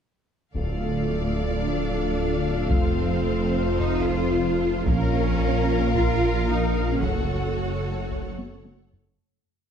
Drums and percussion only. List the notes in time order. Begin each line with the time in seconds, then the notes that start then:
0.54 taiko
2.71 taiko
3.79 taiko
4.87 taiko
5.95 taiko
7.03 taiko
8.11 taiko
8.38 taiko high
8.65 taiko high
8.93 taiko low